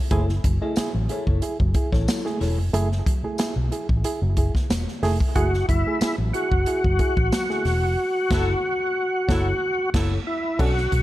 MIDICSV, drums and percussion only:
0, 0, Header, 1, 2, 480
1, 0, Start_track
1, 0, Key_signature, 3, "minor"
1, 0, Tempo, 655022
1, 81, Time_signature, 4, 2, 24, 8
1, 8079, End_track
2, 0, Start_track
2, 0, Title_t, "Drums"
2, 79, Note_on_c, 9, 42, 91
2, 81, Note_on_c, 9, 36, 113
2, 153, Note_off_c, 9, 42, 0
2, 154, Note_off_c, 9, 36, 0
2, 212, Note_on_c, 9, 38, 36
2, 285, Note_off_c, 9, 38, 0
2, 323, Note_on_c, 9, 42, 78
2, 324, Note_on_c, 9, 36, 105
2, 396, Note_off_c, 9, 42, 0
2, 397, Note_off_c, 9, 36, 0
2, 555, Note_on_c, 9, 54, 91
2, 560, Note_on_c, 9, 42, 82
2, 564, Note_on_c, 9, 38, 112
2, 628, Note_off_c, 9, 54, 0
2, 634, Note_off_c, 9, 42, 0
2, 637, Note_off_c, 9, 38, 0
2, 800, Note_on_c, 9, 42, 73
2, 873, Note_off_c, 9, 42, 0
2, 930, Note_on_c, 9, 36, 79
2, 1003, Note_off_c, 9, 36, 0
2, 1041, Note_on_c, 9, 42, 91
2, 1114, Note_off_c, 9, 42, 0
2, 1172, Note_on_c, 9, 36, 84
2, 1245, Note_off_c, 9, 36, 0
2, 1277, Note_on_c, 9, 42, 71
2, 1280, Note_on_c, 9, 36, 93
2, 1351, Note_off_c, 9, 42, 0
2, 1353, Note_off_c, 9, 36, 0
2, 1411, Note_on_c, 9, 36, 88
2, 1416, Note_on_c, 9, 38, 39
2, 1484, Note_off_c, 9, 36, 0
2, 1490, Note_off_c, 9, 38, 0
2, 1525, Note_on_c, 9, 54, 101
2, 1528, Note_on_c, 9, 38, 114
2, 1530, Note_on_c, 9, 42, 89
2, 1598, Note_off_c, 9, 54, 0
2, 1602, Note_off_c, 9, 38, 0
2, 1603, Note_off_c, 9, 42, 0
2, 1656, Note_on_c, 9, 38, 35
2, 1729, Note_off_c, 9, 38, 0
2, 1766, Note_on_c, 9, 46, 80
2, 1769, Note_on_c, 9, 38, 37
2, 1840, Note_off_c, 9, 46, 0
2, 1842, Note_off_c, 9, 38, 0
2, 2006, Note_on_c, 9, 42, 91
2, 2079, Note_off_c, 9, 42, 0
2, 2138, Note_on_c, 9, 38, 38
2, 2212, Note_off_c, 9, 38, 0
2, 2246, Note_on_c, 9, 36, 102
2, 2248, Note_on_c, 9, 42, 75
2, 2319, Note_off_c, 9, 36, 0
2, 2321, Note_off_c, 9, 42, 0
2, 2478, Note_on_c, 9, 54, 93
2, 2485, Note_on_c, 9, 42, 97
2, 2489, Note_on_c, 9, 38, 110
2, 2551, Note_off_c, 9, 54, 0
2, 2558, Note_off_c, 9, 42, 0
2, 2562, Note_off_c, 9, 38, 0
2, 2726, Note_on_c, 9, 42, 77
2, 2800, Note_off_c, 9, 42, 0
2, 2852, Note_on_c, 9, 36, 82
2, 2925, Note_off_c, 9, 36, 0
2, 2962, Note_on_c, 9, 42, 93
2, 3036, Note_off_c, 9, 42, 0
2, 3200, Note_on_c, 9, 42, 75
2, 3201, Note_on_c, 9, 36, 86
2, 3273, Note_off_c, 9, 42, 0
2, 3275, Note_off_c, 9, 36, 0
2, 3332, Note_on_c, 9, 36, 81
2, 3336, Note_on_c, 9, 38, 43
2, 3405, Note_off_c, 9, 36, 0
2, 3410, Note_off_c, 9, 38, 0
2, 3446, Note_on_c, 9, 54, 94
2, 3448, Note_on_c, 9, 38, 120
2, 3450, Note_on_c, 9, 42, 91
2, 3519, Note_off_c, 9, 54, 0
2, 3521, Note_off_c, 9, 38, 0
2, 3523, Note_off_c, 9, 42, 0
2, 3576, Note_on_c, 9, 38, 36
2, 3649, Note_off_c, 9, 38, 0
2, 3686, Note_on_c, 9, 46, 85
2, 3689, Note_on_c, 9, 38, 39
2, 3759, Note_off_c, 9, 46, 0
2, 3762, Note_off_c, 9, 38, 0
2, 3814, Note_on_c, 9, 36, 95
2, 3887, Note_off_c, 9, 36, 0
2, 3925, Note_on_c, 9, 36, 104
2, 3925, Note_on_c, 9, 42, 90
2, 3998, Note_off_c, 9, 42, 0
2, 3999, Note_off_c, 9, 36, 0
2, 4057, Note_on_c, 9, 38, 35
2, 4130, Note_off_c, 9, 38, 0
2, 4168, Note_on_c, 9, 36, 94
2, 4170, Note_on_c, 9, 42, 80
2, 4241, Note_off_c, 9, 36, 0
2, 4244, Note_off_c, 9, 42, 0
2, 4404, Note_on_c, 9, 54, 89
2, 4407, Note_on_c, 9, 42, 87
2, 4411, Note_on_c, 9, 38, 112
2, 4477, Note_off_c, 9, 54, 0
2, 4481, Note_off_c, 9, 42, 0
2, 4484, Note_off_c, 9, 38, 0
2, 4647, Note_on_c, 9, 42, 68
2, 4720, Note_off_c, 9, 42, 0
2, 4775, Note_on_c, 9, 36, 93
2, 4848, Note_off_c, 9, 36, 0
2, 4883, Note_on_c, 9, 42, 82
2, 4956, Note_off_c, 9, 42, 0
2, 5015, Note_on_c, 9, 36, 86
2, 5088, Note_off_c, 9, 36, 0
2, 5122, Note_on_c, 9, 42, 77
2, 5124, Note_on_c, 9, 36, 92
2, 5195, Note_off_c, 9, 42, 0
2, 5197, Note_off_c, 9, 36, 0
2, 5254, Note_on_c, 9, 36, 97
2, 5327, Note_off_c, 9, 36, 0
2, 5366, Note_on_c, 9, 54, 90
2, 5369, Note_on_c, 9, 38, 119
2, 5370, Note_on_c, 9, 42, 82
2, 5439, Note_off_c, 9, 54, 0
2, 5442, Note_off_c, 9, 38, 0
2, 5444, Note_off_c, 9, 42, 0
2, 5497, Note_on_c, 9, 38, 32
2, 5570, Note_off_c, 9, 38, 0
2, 5606, Note_on_c, 9, 46, 85
2, 5609, Note_on_c, 9, 38, 41
2, 5679, Note_off_c, 9, 46, 0
2, 5682, Note_off_c, 9, 38, 0
2, 6085, Note_on_c, 9, 49, 77
2, 6087, Note_on_c, 9, 36, 110
2, 6089, Note_on_c, 9, 38, 95
2, 6158, Note_off_c, 9, 49, 0
2, 6160, Note_off_c, 9, 36, 0
2, 6162, Note_off_c, 9, 38, 0
2, 6805, Note_on_c, 9, 36, 105
2, 6809, Note_on_c, 9, 38, 96
2, 6878, Note_off_c, 9, 36, 0
2, 6882, Note_off_c, 9, 38, 0
2, 7284, Note_on_c, 9, 36, 109
2, 7285, Note_on_c, 9, 49, 87
2, 7289, Note_on_c, 9, 38, 110
2, 7357, Note_off_c, 9, 36, 0
2, 7358, Note_off_c, 9, 49, 0
2, 7362, Note_off_c, 9, 38, 0
2, 7763, Note_on_c, 9, 36, 106
2, 7764, Note_on_c, 9, 49, 93
2, 7836, Note_off_c, 9, 36, 0
2, 7837, Note_off_c, 9, 49, 0
2, 7895, Note_on_c, 9, 38, 34
2, 7968, Note_off_c, 9, 38, 0
2, 8003, Note_on_c, 9, 42, 68
2, 8004, Note_on_c, 9, 36, 95
2, 8077, Note_off_c, 9, 36, 0
2, 8077, Note_off_c, 9, 42, 0
2, 8079, End_track
0, 0, End_of_file